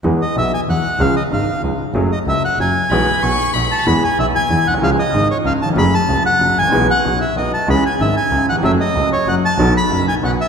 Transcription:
X:1
M:3/4
L:1/16
Q:1/4=189
K:E
V:1 name="Violin"
z12 | z12 | z12 | b4 c'4 b4 |
z12 | z12 | z12 | z12 |
z12 | z12 | z12 |]
V:2 name="Bandoneon"
z2 d2 e2 g2 f4 | ^e2 d2 e4 z4 | z2 d2 e2 f2 g4- | g8 z2 a2 |
b2 g2 e2 g4 f2 | ^e2 d4 c2 e2 a2 | b2 a4 f4 g2- | g2 f4 e2 d2 a2 |
b2 g2 e2 g4 f2 | e2 d4 c2 f2 a2- | a2 b4 g2 f2 e2 |]
V:3 name="Upright piano" clef=bass
[E,,E,G,B,G]2 z2 [B,,,B,,]2 z2 [E,,E,]2 z2 | [C,,C,^E,G,CG]2 z2 [G,,,G,,]2 z2 [C,,C,]2 z2 | [F,,F,A,CG]2 z2 [C,,C,]2 z2 [F,,F,]2 z2 | [B,,,B,,E,G,B,G]2 z2 [B,,,B,,]2 z2 [B,,,B,,]2 z2 |
[E,,E,G,B,G]2 z2 [B,,,B,,]2 z2 [E,,E,]2 z/2 ^A,,,/2 B,,,/2 =C,,/2 | [C,,C,^E,G,CG]2 z2 [G,,,G,,]2 z2 [C,,C,]2 z/2 D,,/2 =E,,/2 ^E,,/2 | [F,,F,A,CG]2 z2 [C,,C,]2 z2 [F,,F,]2 z/2 G,,,/2 A,,,/2 ^A,,,/2 | [B,,,B,,E,G,B,G]2 z2 [B,,,B,,]2 z2 [B,,,B,,]2 z2 |
[C,,C,E,G,CG]2 z2 [G,,,G,,]2 z2 [C,,C,]2 z/2 D,,/2 E,,/2 =F,,/2 | [F,,F,A,CA]2 z2 [C,,C,]2 z2 [F,,F,]2 z2 | [B,,,B,,F,B,DA]2 z2 [F,,,F,,]2 z2 [B,,,B,,]2 z2 |]
V:4 name="Double bass" clef=bass
E,,2 z2 B,,,2 z2 E,,2 z2 | C,,2 z2 G,,,2 z2 C,,2 z2 | F,,,2 z2 C,,2 z2 F,,,2 z2 | B,,,2 z2 B,,,2 z2 B,,,2 z2 |
E,,2 z2 B,,,2 z2 E,,2 B,,,2 | C,,2 z2 G,,,2 z2 C,,2 z2 | F,,,2 z2 C,,2 z2 F,,,2 A,,,2 | B,,,2 z2 B,,,2 z2 B,,,2 z2 |
C,,2 z2 G,,,2 z2 C,,2 z2 | F,,,2 z2 C,,2 z2 F,,,2 z2 | B,,,2 z2 F,,,2 z2 B,,,2 z2 |]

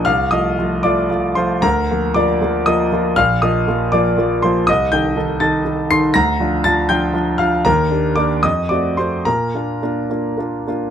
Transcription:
X:1
M:6/8
L:1/8
Q:3/8=78
K:Bb
V:1 name="Grand piano"
[ff'] [ee']2 [dd']2 [cc'] | [Bb]2 [dd']2 [ee']2 | [ff'] [ee']2 [dd']2 [cc'] | [ee'] [gg']2 [aa']2 [c'c''] |
[bb']2 [aa'] [gg']2 [ff'] | [Bb]2 [dd'] [ee'] [dd'] [cc'] | [Bb]4- [Bb] z |]
V:2 name="Grand piano"
C,, [F,A,F] [F,A,F] [F,A,F] [F,A,F] [F,A,F] | D,, [F,B,F] [F,B,F] [F,B,F] [F,B,F] [F,B,F] | B,,, [F,B,F] [F,B,F] [F,B,F] [F,B,F] [F,B,F] | C,, [E,EA] [E,EA] [E,EA] [E,EA] [E,EA] |
D,, [F,DF] [F,DF] [F,DF] [F,DF] [F,DF] | E,, [B,DG] [B,DG] F,, [A,C_G] [A,CG] | B,, [B,DF] [B,DF] [B,DF] [B,DF] [B,DF] |]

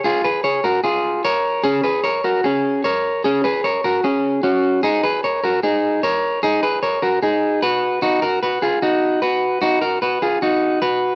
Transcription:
X:1
M:4/4
L:1/8
Q:1/4=150
K:F#
V:1 name="Clean electric guitar"
[EG] [GB] [Gc] [FA] [EG]2 [Ac]2 | [CG] [GB] [Ac] [FA] [CG]2 [Ac]2 | [CG] [GB] [Ac] [FA] [CG]2 [CF]2 | [DG] [GB] [Ac] [FA] [DG]2 [Ac]2 |
[DG] [GB] [Ac] [FA] [DG]2 [FB]2 | [DF] [FA] [FB] [EG] [DF]2 [FB]2 | [DF] [FA] [FB] [EG] [DF]2 [FB]2 |]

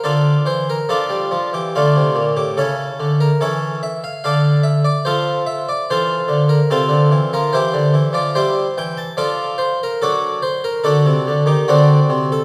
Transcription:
X:1
M:3/4
L:1/16
Q:1/4=72
K:Dm
V:1 name="Harpsichord"
[DFA]2 c B [DFA]3 G [A,DF]3 G | [^CEA]3 B [CEA]2 e f [Adf]2 e d | [FAc]2 e d [FAc]3 B [CFA]3 B | [EGc]3 d [EGc]2 g a [FAd]2 c B |
[K:Dphr] [D^FA]2 c B [DFA]3 G [CDF]3 A |]
V:2 name="Harpsichord" clef=bass
D,2 E,2 F, G, F, E, D, C, B,, A,, | ^C,2 D,2 E,4 D,4 | F,4 E,2 D,2 C, D, E, F, | E, D, E, F, G,2 E,2 F,4 |
[K:Dphr] ^F,4 D, C, D, E, D,2 C,2 |]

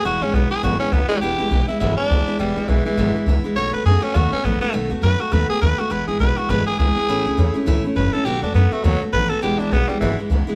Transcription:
X:1
M:4/4
L:1/8
Q:"Swing" 1/4=205
K:E
V:1 name="Tenor saxophone"
F C B, G F C B, G, | =G3 E E =D3 | =G,2 E, E,4 z | c B G C F C B, B, |
z2 B F B G B F | B G B F B G G2- | G4 z2 B A | =G =D B, A, F, z B A |
=G =D B, =G, E, z3 |]
V:2 name="Steel-string acoustic guitar"
[E,,B,,E,G,B,E] [E,G,B,E] [E,G,B,E] [E,G,B,E] [E,,B,,E,G,B,E] [E,G,B,E] [E,G,B,E] [E,G,B,E] | [E,,B,,E,G,B,E] [E,G,B,E] [E,G,B,E] [E,G,B,E] [E,,B,,E,G,B,E] [E,G,B,E] [E,G,B,E] [E,G,B,E] | [E,,B,,E,G,B,E] [E,G,B,E] [E,G,B,E] [E,G,B,E] [E,,B,,E,G,B,E] [E,G,B,E] [E,G,B,E] [E,G,B,E] | [B,,D,A,B,F] [A,B,F] [D,A,B,F] [A,B,F] [B,,D,A,B,F] [A,B,F] [D,A,B,F] [A,B,F] |
[B,,D,A,B,F] [A,B,F] [D,A,B,F] [A,B,F] [B,,D,A,B,F] [A,B,F] [D,A,B,F] [A,B,F] | [E,,B,,E,G,B,E] [E,G,B,E] [E,G,B,E] [E,G,B,E] [E,,B,,E,G,B,E] [E,G,B,E] [E,G,B,E] [E,G,B,E] | [A,,E,A,CE] [A,CE] [E,A,CE] [A,CE] [A,,E,A,CE] [A,CE] [E,A,CE] [A,CE] | [B,,D,A,B,F] [A,B,F] [D,A,B,F] [A,B,F] [B,,D,A,B,F] [A,B,F] [D,A,B,F] [A,B,F] |
[E,,B,,E,G,B,E] [E,G,B,E] [E,G,B,E] [E,G,B,E] [E,,B,,E,G,B,E] [E,G,B,E] [E,G,B,E] [E,G,B,E] |]
V:3 name="Upright bass" clef=bass
E,,, G,,, B,,, z G,,, z C,, z | E,,, G,,, B,,, z G,,, z C,, z | E,,, G,,, B,,, z G,,, z C,, z | B,,, D,, F,, z D,, z A,,, z |
B,,, D,, F,, z D,, z D,, z | E,,, G,,, B,,, z G,,, z C,, z | A,,, C,, E,, z C,, z F,,, z | B,,, D,, F,, z D,, z A,,, z |
E,,, G,,, B,,, z G,,, z C,, z |]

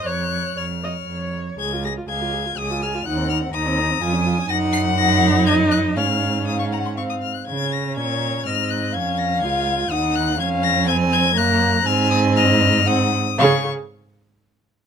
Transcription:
X:1
M:3/4
L:1/16
Q:1/4=121
K:Db
V:1 name="Violin"
g'4 f'6 z2 | a'2 b'2 a'4 e'2 f'2 | g'2 f'2 e'8 | b'2 c''2 b'4 a'2 g'2 |
f'4 e' d' b c' d' e' f' g' | a'2 b'2 a'4 f'2 g'2 | a'2 b'2 a'4 e'2 g'2 | a'2 b'2 a'2 a'2 g'4 |
f'2 e'2 f'4 e'4 | d'2 z8 z2 |]
V:2 name="Violin"
z2 d4 d4 d2 | z4 f4 a4 | g4 b4 a4 | g8 e4 |
f4 f2 g2 f4 | z4 d4 e4 | f8 g4 | f4 a4 b4 |
a4 e4 g2 z2 | f2 z8 z2 |]
V:3 name="Viola"
d4 d2 e2 d4 | A F A F A F A F A F A F | E C E C E C E C F D F D | E4 E8 |
D8 C2 z2 | D8 C4 | D4 F4 E4 | D4 C4 B,4 |
C8 C2 z2 | A2 z8 z2 |]
V:4 name="Cello" clef=bass
F,,4 F,,4 F,,4 | D,,4 D,,4 D,,4 | E,,4 E,,4 F,,4 | G,,12 |
A,,8- A,,2 z2 | D,4 B,,4 A,,4 | F,,4 D,,4 E,,4 | F,,8 G,,4 |
A,,8- A,,2 z2 | D,2 z8 z2 |]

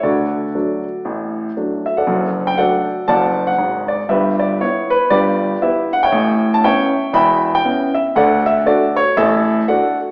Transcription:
X:1
M:4/4
L:1/16
Q:"Swing" 1/4=118
K:D
V:1 name="Grand piano"
[FAd]12 z2 e [Adf]- | [Adf]3 g [Adf]4 [dfa]3 f3 d2 | [GBe]2 d2 c2 B2 [GBd]4 [GBe]2 f [ceg]- | [ceg]3 a [ceg]4 [egb]3 g3 e2 |
[Adf]2 e2 [FAd]2 c2 [Ae]4 [Adf]2 z2 |]
V:2 name="Grand piano" clef=bass
[D,,D,]4 [F,A,D]4 [A,,,A,,]4 [F,A,D]4 | [F,,,F,,]4 [F,A,D]4 [F,,,F,,]4 [^G,,,^G,,]4 | [G,,,G,,]4 [B,E]4 [G,,,G,,]4 [B,E]4 | [A,,,A,,]4 [B,CE]4 [E,,,E,,]4 [B,CE]4 |
[D,,D,]4 [A,D]4 [A,,,A,,]4 [A,DF]4 |]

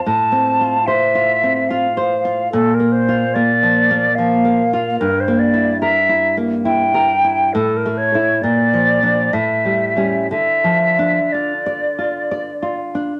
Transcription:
X:1
M:3/4
L:1/16
Q:1/4=71
K:Dm
V:1 name="Flute"
a4 e4 f4 | A B c2 d4 f4 | B c d2 e3 z g4 | A B ^c2 d4 e4 |
e4 d6 z2 |]
V:2 name="Nylon-string guitar"
(3A,,2 C2 F2 (3c2 F2 C2 (3F2 c2 F2 | (3B,,2 B,2 F2 (3B,2 F,2 B,2 (3F,2 B,2 F2 | (3G,,2 B,2 E2 (3B2 E2 B,2 (3E2 B2 E2 | (3A,,2 A,2 [A,E]2 (3B,,2 F,2 [F,D]2 (3A,,2 G,2 [G,^C]2 |
(3D,2 F,2 D2 (3F2 d2 F2 (3d2 F2 D2 |]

